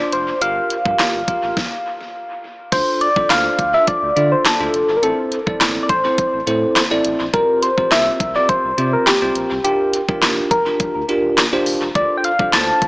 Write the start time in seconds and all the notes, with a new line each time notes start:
Already playing: D5
0.00 D4 F4 C5
0.12 F1 C5, closed hi-hat
0.41 G1 F4 G4 A#4 F5, closed hi-hat
0.70 closed hi-hat
0.85 G2 F4 G4 A#4, kick
0.99 snare, clap, closed hi-hat
1.15 G1
1.28 F4 G4 A#4, kick, closed hi-hat
1.43 A1
1.57 kick, snare
2.72 D2 D4 F4 A4 C5, kick, closed hi-hat, crash
3.01 D5, closed hi-hat
3.16 C2 D4 F4 A4 C5, kick
3.30 D2 F5, snare, clap, closed hi-hat, tambourine
3.59 D2, kick, closed hi-hat
3.74 D4 F4 A4 C5 E5
3.87 D5, kick, closed hi-hat
4.03 D2
4.16 D3 D4 F4 A4 D5, closed hi-hat
4.32 C5
4.45 A4, snare, clap, closed hi-hat, tambourine
4.60 D2 D4 F4 A4 C5
4.74 F1, closed hi-hat
4.89 G1
4.97 A#4
5.02 A1 C4 E4 A4 C5, closed hi-hat
5.32 closed hi-hat
5.47 G1 C4 E4 A4 D5, kick
5.61 A1, snare, clap, closed hi-hat, tambourine
5.83 D5
5.89 A1 C5, kick, closed hi-hat
6.04 C4 E4 A4 C5
6.18 kick, closed hi-hat
6.33 A1
6.47 A2 C4 E4 A4 C5, closed hi-hat
6.76 snare, clap, closed hi-hat, tambourine
6.91 A1 C4 E4 A4 D5
7.05 A1, closed hi-hat
7.20 A#1
7.33 C2 C4 F4 G4 A#4 C5, kick, closed hi-hat
7.62 C5, closed hi-hat
7.78 A1 C4 F4 G4 C5, kick
7.91 C2 E5, snare, clap, closed hi-hat, tambourine
8.20 C2, kick, closed hi-hat
8.35 C4 F4 G4 A#4 D5
8.49 C5, kick, closed hi-hat
8.65 C2
8.78 C3 C4 F4 G4 C5, closed hi-hat
8.93 A#4
9.07 G4, snare, clap, closed hi-hat, tambourine
9.22 C2 C4 F4 G4 C5
9.35 A#1, closed hi-hat
9.51 C2
9.64 D1 D4 F4 G4 A#4, closed hi-hat
9.93 closed hi-hat
10.08 D1 D4 F4 G4 A#4, kick
10.22 F1, snare, clap, closed hi-hat, tambourine
10.51 F1 A#4, kick, closed hi-hat
10.66 D4 F4 G4 A#4
10.80 F1, kick, closed hi-hat
10.95 D2
11.09 D4 F4 G4 A#4, closed hi-hat
11.24 D1
11.38 snare, clap, closed hi-hat, tambourine
11.53 D1 D4 F4 G4 C5
11.66 D1, open hi-hat
11.82 E1
11.95 D2 D4 F4 A4 C5 D5, kick, closed hi-hat
12.18 G5
12.24 F5, closed hi-hat
12.39 C2 D4 F4 A4 C5, kick
12.53 D2 A5, snare, clap, closed hi-hat, tambourine
12.82 D2, kick, closed hi-hat